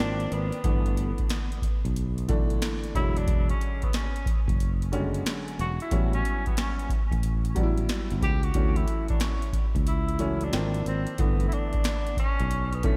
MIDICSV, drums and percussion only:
0, 0, Header, 1, 2, 480
1, 0, Start_track
1, 0, Tempo, 659341
1, 467, Time_signature, 4, 2, 24, 8
1, 9440, End_track
2, 0, Start_track
2, 0, Title_t, "Drums"
2, 146, Note_on_c, 9, 42, 49
2, 218, Note_off_c, 9, 42, 0
2, 232, Note_on_c, 9, 42, 67
2, 305, Note_off_c, 9, 42, 0
2, 382, Note_on_c, 9, 42, 57
2, 455, Note_off_c, 9, 42, 0
2, 466, Note_on_c, 9, 42, 81
2, 467, Note_on_c, 9, 36, 119
2, 539, Note_off_c, 9, 42, 0
2, 540, Note_off_c, 9, 36, 0
2, 625, Note_on_c, 9, 42, 46
2, 698, Note_off_c, 9, 42, 0
2, 709, Note_on_c, 9, 42, 72
2, 782, Note_off_c, 9, 42, 0
2, 860, Note_on_c, 9, 42, 46
2, 869, Note_on_c, 9, 36, 77
2, 933, Note_off_c, 9, 42, 0
2, 942, Note_off_c, 9, 36, 0
2, 943, Note_on_c, 9, 42, 88
2, 949, Note_on_c, 9, 38, 103
2, 1016, Note_off_c, 9, 42, 0
2, 1022, Note_off_c, 9, 38, 0
2, 1106, Note_on_c, 9, 42, 46
2, 1179, Note_off_c, 9, 42, 0
2, 1180, Note_on_c, 9, 36, 83
2, 1188, Note_on_c, 9, 42, 72
2, 1253, Note_off_c, 9, 36, 0
2, 1261, Note_off_c, 9, 42, 0
2, 1349, Note_on_c, 9, 42, 48
2, 1422, Note_off_c, 9, 42, 0
2, 1430, Note_on_c, 9, 42, 78
2, 1503, Note_off_c, 9, 42, 0
2, 1587, Note_on_c, 9, 42, 49
2, 1659, Note_off_c, 9, 42, 0
2, 1665, Note_on_c, 9, 42, 73
2, 1668, Note_on_c, 9, 36, 102
2, 1738, Note_off_c, 9, 42, 0
2, 1741, Note_off_c, 9, 36, 0
2, 1822, Note_on_c, 9, 42, 50
2, 1895, Note_off_c, 9, 42, 0
2, 1906, Note_on_c, 9, 42, 94
2, 1909, Note_on_c, 9, 38, 102
2, 1979, Note_off_c, 9, 42, 0
2, 1982, Note_off_c, 9, 38, 0
2, 2064, Note_on_c, 9, 42, 47
2, 2137, Note_off_c, 9, 42, 0
2, 2146, Note_on_c, 9, 36, 84
2, 2151, Note_on_c, 9, 42, 69
2, 2219, Note_off_c, 9, 36, 0
2, 2224, Note_off_c, 9, 42, 0
2, 2305, Note_on_c, 9, 42, 56
2, 2377, Note_off_c, 9, 42, 0
2, 2385, Note_on_c, 9, 42, 85
2, 2386, Note_on_c, 9, 36, 116
2, 2458, Note_off_c, 9, 42, 0
2, 2459, Note_off_c, 9, 36, 0
2, 2544, Note_on_c, 9, 42, 51
2, 2617, Note_off_c, 9, 42, 0
2, 2631, Note_on_c, 9, 42, 65
2, 2703, Note_off_c, 9, 42, 0
2, 2782, Note_on_c, 9, 42, 44
2, 2790, Note_on_c, 9, 36, 77
2, 2854, Note_off_c, 9, 42, 0
2, 2862, Note_off_c, 9, 36, 0
2, 2863, Note_on_c, 9, 42, 91
2, 2869, Note_on_c, 9, 38, 96
2, 2936, Note_off_c, 9, 42, 0
2, 2942, Note_off_c, 9, 38, 0
2, 3028, Note_on_c, 9, 42, 50
2, 3101, Note_off_c, 9, 42, 0
2, 3101, Note_on_c, 9, 36, 89
2, 3110, Note_on_c, 9, 42, 77
2, 3174, Note_off_c, 9, 36, 0
2, 3183, Note_off_c, 9, 42, 0
2, 3260, Note_on_c, 9, 36, 86
2, 3270, Note_on_c, 9, 42, 46
2, 3333, Note_off_c, 9, 36, 0
2, 3343, Note_off_c, 9, 42, 0
2, 3351, Note_on_c, 9, 42, 73
2, 3424, Note_off_c, 9, 42, 0
2, 3510, Note_on_c, 9, 42, 46
2, 3583, Note_off_c, 9, 42, 0
2, 3587, Note_on_c, 9, 42, 72
2, 3660, Note_off_c, 9, 42, 0
2, 3745, Note_on_c, 9, 42, 56
2, 3818, Note_off_c, 9, 42, 0
2, 3830, Note_on_c, 9, 42, 96
2, 3833, Note_on_c, 9, 38, 109
2, 3903, Note_off_c, 9, 42, 0
2, 3906, Note_off_c, 9, 38, 0
2, 3989, Note_on_c, 9, 42, 50
2, 4062, Note_off_c, 9, 42, 0
2, 4073, Note_on_c, 9, 42, 68
2, 4145, Note_off_c, 9, 42, 0
2, 4224, Note_on_c, 9, 42, 53
2, 4297, Note_off_c, 9, 42, 0
2, 4305, Note_on_c, 9, 42, 89
2, 4307, Note_on_c, 9, 36, 123
2, 4378, Note_off_c, 9, 42, 0
2, 4380, Note_off_c, 9, 36, 0
2, 4465, Note_on_c, 9, 42, 50
2, 4538, Note_off_c, 9, 42, 0
2, 4551, Note_on_c, 9, 42, 69
2, 4624, Note_off_c, 9, 42, 0
2, 4703, Note_on_c, 9, 42, 41
2, 4710, Note_on_c, 9, 36, 74
2, 4776, Note_off_c, 9, 42, 0
2, 4783, Note_off_c, 9, 36, 0
2, 4784, Note_on_c, 9, 42, 89
2, 4790, Note_on_c, 9, 38, 97
2, 4856, Note_off_c, 9, 42, 0
2, 4862, Note_off_c, 9, 38, 0
2, 4946, Note_on_c, 9, 42, 48
2, 5019, Note_off_c, 9, 42, 0
2, 5020, Note_on_c, 9, 36, 83
2, 5027, Note_on_c, 9, 42, 70
2, 5093, Note_off_c, 9, 36, 0
2, 5100, Note_off_c, 9, 42, 0
2, 5178, Note_on_c, 9, 36, 82
2, 5186, Note_on_c, 9, 42, 47
2, 5250, Note_off_c, 9, 36, 0
2, 5259, Note_off_c, 9, 42, 0
2, 5265, Note_on_c, 9, 42, 77
2, 5337, Note_off_c, 9, 42, 0
2, 5422, Note_on_c, 9, 42, 52
2, 5495, Note_off_c, 9, 42, 0
2, 5503, Note_on_c, 9, 42, 74
2, 5507, Note_on_c, 9, 36, 104
2, 5575, Note_off_c, 9, 42, 0
2, 5580, Note_off_c, 9, 36, 0
2, 5660, Note_on_c, 9, 42, 53
2, 5733, Note_off_c, 9, 42, 0
2, 5744, Note_on_c, 9, 42, 91
2, 5747, Note_on_c, 9, 38, 99
2, 5816, Note_off_c, 9, 42, 0
2, 5819, Note_off_c, 9, 38, 0
2, 5901, Note_on_c, 9, 42, 48
2, 5974, Note_off_c, 9, 42, 0
2, 5984, Note_on_c, 9, 36, 90
2, 5988, Note_on_c, 9, 42, 70
2, 6056, Note_off_c, 9, 36, 0
2, 6061, Note_off_c, 9, 42, 0
2, 6138, Note_on_c, 9, 42, 54
2, 6211, Note_off_c, 9, 42, 0
2, 6217, Note_on_c, 9, 42, 96
2, 6223, Note_on_c, 9, 36, 116
2, 6290, Note_off_c, 9, 42, 0
2, 6295, Note_off_c, 9, 36, 0
2, 6378, Note_on_c, 9, 42, 50
2, 6451, Note_off_c, 9, 42, 0
2, 6462, Note_on_c, 9, 42, 68
2, 6535, Note_off_c, 9, 42, 0
2, 6613, Note_on_c, 9, 42, 43
2, 6626, Note_on_c, 9, 36, 87
2, 6686, Note_off_c, 9, 42, 0
2, 6697, Note_on_c, 9, 42, 95
2, 6699, Note_off_c, 9, 36, 0
2, 6703, Note_on_c, 9, 38, 94
2, 6770, Note_off_c, 9, 42, 0
2, 6776, Note_off_c, 9, 38, 0
2, 6860, Note_on_c, 9, 42, 47
2, 6933, Note_off_c, 9, 42, 0
2, 6937, Note_on_c, 9, 36, 83
2, 6942, Note_on_c, 9, 42, 76
2, 7010, Note_off_c, 9, 36, 0
2, 7015, Note_off_c, 9, 42, 0
2, 7096, Note_on_c, 9, 36, 83
2, 7103, Note_on_c, 9, 42, 48
2, 7168, Note_off_c, 9, 36, 0
2, 7175, Note_off_c, 9, 42, 0
2, 7183, Note_on_c, 9, 42, 76
2, 7256, Note_off_c, 9, 42, 0
2, 7342, Note_on_c, 9, 42, 49
2, 7415, Note_off_c, 9, 42, 0
2, 7419, Note_on_c, 9, 42, 73
2, 7491, Note_off_c, 9, 42, 0
2, 7577, Note_on_c, 9, 42, 57
2, 7650, Note_off_c, 9, 42, 0
2, 7664, Note_on_c, 9, 42, 87
2, 7667, Note_on_c, 9, 38, 100
2, 7737, Note_off_c, 9, 42, 0
2, 7740, Note_off_c, 9, 38, 0
2, 7821, Note_on_c, 9, 42, 48
2, 7894, Note_off_c, 9, 42, 0
2, 7908, Note_on_c, 9, 42, 66
2, 7981, Note_off_c, 9, 42, 0
2, 8056, Note_on_c, 9, 42, 55
2, 8129, Note_off_c, 9, 42, 0
2, 8141, Note_on_c, 9, 42, 90
2, 8145, Note_on_c, 9, 36, 117
2, 8214, Note_off_c, 9, 42, 0
2, 8218, Note_off_c, 9, 36, 0
2, 8299, Note_on_c, 9, 42, 49
2, 8372, Note_off_c, 9, 42, 0
2, 8387, Note_on_c, 9, 42, 73
2, 8460, Note_off_c, 9, 42, 0
2, 8537, Note_on_c, 9, 42, 41
2, 8549, Note_on_c, 9, 36, 85
2, 8610, Note_off_c, 9, 42, 0
2, 8621, Note_off_c, 9, 36, 0
2, 8621, Note_on_c, 9, 42, 82
2, 8627, Note_on_c, 9, 38, 100
2, 8693, Note_off_c, 9, 42, 0
2, 8700, Note_off_c, 9, 38, 0
2, 8784, Note_on_c, 9, 42, 46
2, 8857, Note_off_c, 9, 42, 0
2, 8860, Note_on_c, 9, 36, 83
2, 8866, Note_on_c, 9, 42, 73
2, 8933, Note_off_c, 9, 36, 0
2, 8939, Note_off_c, 9, 42, 0
2, 9024, Note_on_c, 9, 42, 49
2, 9097, Note_off_c, 9, 42, 0
2, 9105, Note_on_c, 9, 42, 85
2, 9178, Note_off_c, 9, 42, 0
2, 9265, Note_on_c, 9, 42, 49
2, 9337, Note_off_c, 9, 42, 0
2, 9342, Note_on_c, 9, 42, 80
2, 9349, Note_on_c, 9, 36, 105
2, 9415, Note_off_c, 9, 42, 0
2, 9422, Note_off_c, 9, 36, 0
2, 9440, End_track
0, 0, End_of_file